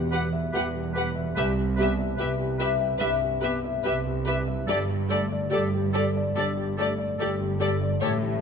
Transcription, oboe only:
0.11 0.27 B4 medium
0.52 0.68 B4 medium
0.94 1.10 B4 medium
1.35 1.51 B4 medium
1.76 1.92 B4 medium
2.17 2.33 B4 medium
2.58 2.74 B4 medium
3.00 3.16 B4 medium
3.42 3.58 B4 medium
3.83 4.00 B4 medium
4.26 4.42 B4 medium
4.67 4.83 A4 medium
5.10 5.26 A4 medium
5.52 5.68 A4 medium
5.93 6.09 A4 medium
6.36 6.52 A4 medium
6.77 6.93 A4 medium
7.19 7.35 A4 medium
7.61 7.77 A4 medium
8.02 8.18 A4 medium

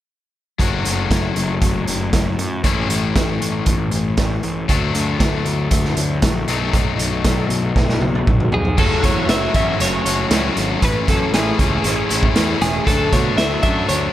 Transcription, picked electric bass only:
0.59 0.81 F#1 medium
0.85 1.07 F#1 medium
1.10 1.32 F#1 medium
1.36 1.58 F#1 medium
1.62 1.84 F#1 medium
1.87 2.09 F#1 medium
2.13 2.35 F#1 medium
2.37 2.59 F#2 medium
2.64 2.86 A1 medium
2.89 3.11 A1 medium
3.16 3.37 A1 medium
3.40 3.62 A1 medium
3.67 3.88 A1 medium
3.92 4.14 A1 medium
4.18 4.40 A1 medium
4.43 4.65 A1 medium
4.69 4.91 D2 medium
4.95 5.16 D2 medium
5.20 5.42 D2 medium
5.45 5.67 D2 medium
5.71 5.93 D2 medium
5.96 6.18 D2 medium
6.23 6.44 A#1 medium
6.48 6.69 B1 medium
6.74 6.95 B1 medium
6.98 7.20 B1 medium
7.25 7.46 B1 medium
7.49 7.71 B1 medium
7.76 7.97 B1 medium
8.00 8.22 B1 medium
8.27 8.49 B1 medium
8.52 8.74 B1 medium
8.78 8.96 F#1 medium
9.04 9.22 E2 medium
9.28 9.46 F#1 medium
9.55 9.72 A1 medium
9.80 9.98 F#1 medium
10.05 10.23 F#1 medium
10.31 10.49 C#2 medium
10.57 10.75 G#1 medium
10.82 11.00 A1 medium
11.08 11.26 F#2 medium
11.33 11.51 A1 medium
11.59 11.77 C#2 medium
11.84 12.02 A1 medium
12.11 12.28 A1 medium
12.36 12.54 E2 medium
12.62 12.79 E1 medium
12.87 13.05 D2 medium
13.13 13.30 B2 medium
13.38 13.56 D2 medium
13.63 13.81 F#2 medium
13.89 14.07 D2 medium

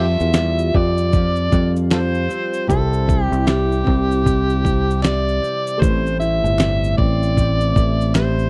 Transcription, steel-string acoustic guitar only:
0.00 0.34 F3 medium
0.00 1.50 F4 medium
0.35 1.90 G3 medium
0.74 2.28 C4 medium
1.13 2.67 F3 medium
1.52 2.79 F4 medium
1.91 3.45 G3 medium
2.29 3.84 C4 medium
2.67 4.23 C3 medium
3.06 4.63 E4 medium
3.45 5.03 G3 medium
3.84 5.41 C4 medium
4.24 5.90 C3 medium
4.64 6.20 E4 medium
5.03 6.58 G3 medium
5.41 6.98 C4 medium
5.81 7.36 A2 medium
6.20 7.75 E4 medium
6.59 8.14 G3 medium
6.98 8.50 C4 medium
7.37 8.50 A2 medium
7.76 8.50 E4 medium
8.15 8.50 G3 medium

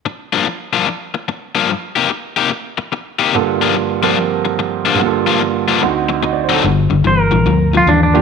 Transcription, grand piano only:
3.35 4.93 G2 medium
3.35 4.96 D3 soft
3.35 4.98 A#3 soft
3.35 5.00 F4 soft
3.35 5.00 A4 medium
4.01 4.98 F3 soft
4.01 4.99 C4 soft
4.01 4.99 G4 soft
4.01 5.00 A#4 medium
4.94 5.79 G2 medium
4.94 5.80 D3 soft
5.00 5.82 A#3 soft
5.00 5.83 F4 soft
5.06 5.85 A4 medium
5.81 6.64 D2 medium
5.81 6.64 D3 medium
5.81 6.64 C4 soft
5.81 6.64 D#4 soft
5.81 6.64 F#4 medium
6.23 6.41 D#5 soft
6.33 6.50 D5 soft
6.43 6.56 C5 soft
6.53 6.68 A4 soft
8.14 8.22 A#3 medium
8.14 8.22 D4 medium
8.14 8.22 F4 medium
8.14 8.22 G4 medium

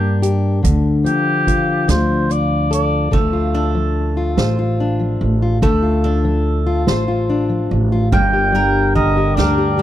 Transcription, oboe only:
0.00 0.21 G4 medium
1.06 1.91 G4 loud
1.90 2.33 C5 medium
2.32 2.71 D5 loud
2.74 3.13 D5 loud
8.13 8.93 G5 loud
8.96 9.37 D#5 loud
9.35 9.82 D5 medium

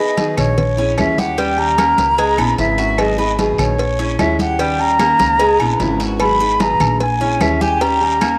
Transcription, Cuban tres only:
0.00 0.36 B4 medium
0.78 1.17 C#4 medium
1.18 1.38 G4 medium
1.38 1.77 G3 medium
1.78 2.17 A#3 medium
2.18 2.38 G#3 medium
2.38 2.77 B3 medium
2.78 3.17 F#4 medium
3.18 3.57 B4 medium
3.99 4.38 C#4 medium
4.40 4.59 G4 medium
4.59 4.98 G3 medium
5.00 5.39 A#3 medium
5.40 5.59 G#3 medium
5.60 5.99 B3 medium
6.00 6.39 F#4 medium
6.40 6.79 B4 medium
7.21 7.60 C#4 medium
7.61 7.81 G4 medium
7.81 8.20 G3 medium
8.21 8.38 A#3 medium

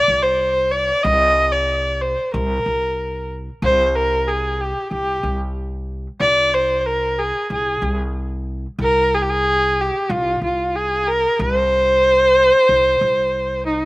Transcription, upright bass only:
0.08 0.90 C2 medium
1.04 2.14 C2 medium
2.34 2.61 C2 medium
2.66 3.48 C2 medium
3.62 4.72 C2 medium
4.91 5.19 C2 medium
5.23 6.06 C2 medium
6.20 7.30 C2 medium
7.50 7.78 C2 medium
7.82 8.65 C2 medium
8.79 9.89 C2 medium
10.09 10.37 C2 medium
10.41 11.24 C2 medium
11.39 12.49 C2 medium
12.69 12.96 C2 medium
13.01 13.84 C2 medium

